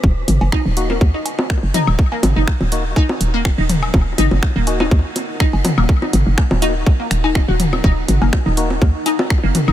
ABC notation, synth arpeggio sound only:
X:1
M:4/4
L:1/16
Q:"Swing 16ths" 1/4=123
K:Ebm
V:1 name="Synth arpeggio sound"
z4 E z2 B, z E z4 E z | z B, z E z4 E z2 B, z E z2 | z2 E z2 B, z E z4 E z2 B, | z E z4 E z2 B, z E E G z2 |
E z2 B, z E z4 E z2 B, z E |]